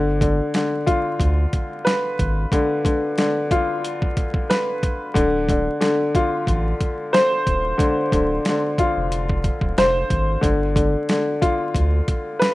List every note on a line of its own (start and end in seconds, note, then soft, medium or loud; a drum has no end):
0.00 0.41 G1 loud
0.00 0.19 D3 medium
0.21 0.54 D3 medium
0.21 kick loud
0.21 closed hi-hat medium
0.54 2.20 D3 medium
0.54 snare loud
0.54 closed hi-hat medium
0.86 2.52 F4 medium
0.86 kick medium
0.86 closed hi-hat medium
1.20 1.46 D2 loud
1.20 kick medium
1.20 closed hi-hat medium
1.53 kick medium
1.53 closed hi-hat medium
1.85 3.50 B4 medium
1.85 snare loud
1.85 closed hi-hat medium
2.19 2.46 G#1 loud
2.19 kick medium
2.19 closed hi-hat medium
2.52 2.83 D3 medium
2.52 kick loud
2.52 closed hi-hat loud
2.85 3.17 D3 medium
2.85 kick loud
2.85 closed hi-hat medium
3.18 4.83 D3 medium
3.18 snare loud
3.18 closed hi-hat medium
3.51 5.16 F4 medium
3.51 kick medium
3.51 closed hi-hat medium
3.84 closed hi-hat medium
4.02 kick medium
4.17 kick medium
4.17 closed hi-hat medium
4.34 kick medium
4.50 5.16 B4 medium
4.50 snare loud
4.50 closed hi-hat medium
4.83 kick medium
4.83 closed hi-hat medium
5.14 5.68 D1 loud
5.14 5.48 D3 medium
5.14 kick loud
5.14 closed hi-hat loud
5.49 5.79 D3 medium
5.49 kick loud
5.49 closed hi-hat medium
5.81 7.46 D3 medium
5.81 snare loud
5.81 closed hi-hat medium
6.15 7.80 F4 medium
6.15 kick medium
6.15 closed hi-hat medium
6.47 6.74 A1 loud
6.47 kick medium
6.47 closed hi-hat medium
6.81 kick medium
6.81 closed hi-hat medium
7.13 8.78 C5 loud
7.13 snare loud
7.13 closed hi-hat medium
7.47 7.73 D#1 medium
7.47 kick medium
7.47 closed hi-hat medium
7.78 8.11 D3 medium
7.78 kick loud
7.78 closed hi-hat loud
8.12 8.39 D1 loud
8.12 8.47 D3 medium
8.12 kick medium
8.12 closed hi-hat medium
8.45 10.12 D3 medium
8.45 snare loud
8.45 closed hi-hat medium
8.78 10.44 F4 medium
8.78 kick medium
8.78 closed hi-hat medium
8.97 9.49 F1 medium
9.12 closed hi-hat loud
9.29 kick medium
9.44 kick medium
9.44 closed hi-hat medium
9.61 9.74 D1 medium
9.61 kick medium
9.78 10.04 F1 medium
9.78 10.44 C5 medium
9.78 snare loud
9.78 closed hi-hat medium
10.10 10.37 G#1 loud
10.10 kick medium
10.10 closed hi-hat medium
10.41 10.96 G1 loud
10.41 10.74 D3 medium
10.41 kick loud
10.41 closed hi-hat loud
10.76 11.09 D3 medium
10.76 kick loud
10.76 closed hi-hat medium
11.09 12.54 D3 medium
11.09 snare loud
11.09 closed hi-hat medium
11.42 12.54 F4 medium
11.42 kick loud
11.42 closed hi-hat medium
11.75 12.01 D2 loud
11.75 kick medium
11.75 closed hi-hat loud
12.08 kick medium
12.08 closed hi-hat medium
12.39 12.54 B4 medium
12.39 snare loud
12.39 closed hi-hat medium